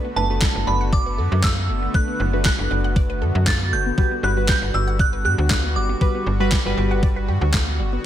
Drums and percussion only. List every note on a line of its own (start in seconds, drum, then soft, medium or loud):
0.42 kick loud
0.42 snare medium
0.42 clap loud
0.93 kick loud
1.44 kick loud
1.44 snare medium
1.44 clap loud
1.94 kick loud
2.45 kick loud
2.45 snare medium
2.45 clap loud
2.96 kick loud
3.47 kick loud
3.47 snare medium
3.47 clap loud
3.98 kick loud
4.49 kick loud
4.49 snare medium
4.49 clap loud
4.99 kick loud
5.50 kick loud
5.50 snare medium
5.50 clap loud
6.01 kick loud
6.52 kick loud
6.52 snare medium
6.52 clap loud
7.03 kick loud
7.54 kick loud
7.54 snare medium
7.54 clap loud